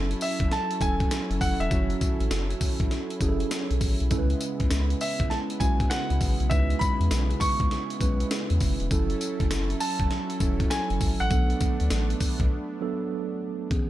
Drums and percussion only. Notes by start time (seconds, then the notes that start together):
0.11 closed hi-hat
0.21 open hi-hat, tambourine
0.40 kick, closed hi-hat
0.52 snare, closed hi-hat
0.71 closed hi-hat
0.81 kick, closed hi-hat, tambourine
1.00 kick, closed hi-hat
1.11 snare, closed hi-hat, tambourine
1.31 closed hi-hat
1.41 kick, open hi-hat, tambourine
1.61 closed hi-hat
1.71 kick, closed hi-hat, tambourine
1.90 closed hi-hat
2.01 kick, closed hi-hat, tambourine
2.20 closed hi-hat
2.31 snare, closed hi-hat, tambourine
2.50 closed hi-hat
2.61 kick, open hi-hat, tambourine
2.80 kick, closed hi-hat
2.91 snare, closed hi-hat
3.10 closed hi-hat
3.21 kick, closed hi-hat, tambourine
3.40 closed hi-hat
3.51 snare, closed hi-hat, tambourine
3.71 closed hi-hat
3.81 kick, open hi-hat, tambourine
4.00 closed hi-hat
4.11 kick, closed hi-hat, tambourine
4.30 closed hi-hat
4.41 closed hi-hat, tambourine
4.60 kick, closed hi-hat
4.71 snare, closed hi-hat, tambourine
4.90 closed hi-hat
5.01 open hi-hat, tambourine
5.20 kick, closed hi-hat
5.31 snare, closed hi-hat
5.50 closed hi-hat
5.60 kick, closed hi-hat, tambourine
5.80 kick, closed hi-hat
5.91 snare, closed hi-hat, tambourine
6.10 closed hi-hat
6.21 kick, open hi-hat, tambourine
6.40 closed hi-hat
6.51 kick, closed hi-hat, tambourine
6.70 closed hi-hat
6.81 kick, closed hi-hat, tambourine
7.01 closed hi-hat
7.11 snare, closed hi-hat, tambourine
7.31 closed hi-hat
7.41 kick, open hi-hat, tambourine
7.60 kick, closed hi-hat
7.71 snare, closed hi-hat
7.90 closed hi-hat
8.01 kick, closed hi-hat, tambourine
8.20 closed hi-hat
8.31 snare, closed hi-hat, tambourine
8.50 closed hi-hat
8.60 kick, open hi-hat, tambourine
8.80 closed hi-hat
8.91 kick, closed hi-hat, tambourine
9.10 closed hi-hat
9.21 closed hi-hat, tambourine
9.40 kick, closed hi-hat
9.51 snare, closed hi-hat, tambourine
9.70 closed hi-hat
9.80 open hi-hat, tambourine
10.00 kick, closed hi-hat
10.11 snare, closed hi-hat
10.30 closed hi-hat
10.40 kick, closed hi-hat, tambourine
10.60 kick, closed hi-hat
10.71 snare, closed hi-hat, tambourine
10.90 closed hi-hat
11.01 kick, open hi-hat, tambourine
11.20 closed hi-hat
11.31 kick, closed hi-hat, tambourine
11.50 closed hi-hat
11.61 kick, closed hi-hat, tambourine
11.80 closed hi-hat
11.90 snare, closed hi-hat, tambourine
12.10 closed hi-hat
12.20 kick, open hi-hat, tambourine
12.40 kick, closed hi-hat
13.71 kick, closed hi-hat